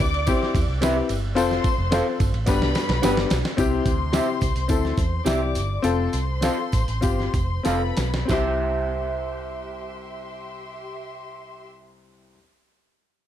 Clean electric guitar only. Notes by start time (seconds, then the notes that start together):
0.82 G4 C5 E5
1.92 A4 C5 F5
3.03 D4 G4 B4
4.13 G4 C5 E5
5.26 G4 C5 E5
6.43 A4 C5 F5
7.65 A4 C5 F5
8.28 G4 C5
8.33 E5